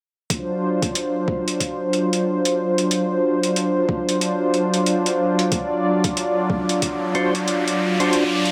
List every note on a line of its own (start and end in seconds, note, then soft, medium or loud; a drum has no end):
0.30 8.52 F#3 medium
0.30 8.52 D4 medium
0.30 8.52 F4 medium
0.30 5.48 C5 medium
0.30 kick loud
0.30 closed hi-hat medium
0.82 kick medium
0.82 closed hi-hat soft
0.95 closed hi-hat medium
1.28 kick medium
1.48 closed hi-hat soft
1.60 kick medium
1.60 closed hi-hat medium
1.93 closed hi-hat soft
2.13 closed hi-hat soft
2.45 closed hi-hat medium
2.78 closed hi-hat medium
2.91 closed hi-hat medium
3.43 closed hi-hat soft
3.56 closed hi-hat medium
3.89 kick medium
4.09 closed hi-hat soft
4.21 closed hi-hat medium
4.54 closed hi-hat soft
4.74 closed hi-hat soft
4.86 closed hi-hat medium
5.06 closed hi-hat medium
5.39 closed hi-hat soft
5.52 8.52 D5 medium
5.52 kick loud
5.52 closed hi-hat medium
5.52 riser medium
6.04 kick loud
6.04 closed hi-hat medium
6.17 closed hi-hat medium
6.50 kick loud
6.69 closed hi-hat soft
6.82 kick medium
6.82 closed hi-hat medium
7.15 7.34 D4 medium
7.15 7.34 F4 medium
7.15 7.34 F#4 medium
7.15 7.34 C5 medium
7.15 closed hi-hat soft
7.35 closed hi-hat soft
7.48 closed hi-hat medium
7.68 closed hi-hat medium
8.00 8.24 D4 medium
8.00 8.24 F4 medium
8.00 8.24 F#4 medium
8.00 8.24 C5 medium
8.00 closed hi-hat medium
8.13 closed hi-hat medium
8.45 closed hi-hat soft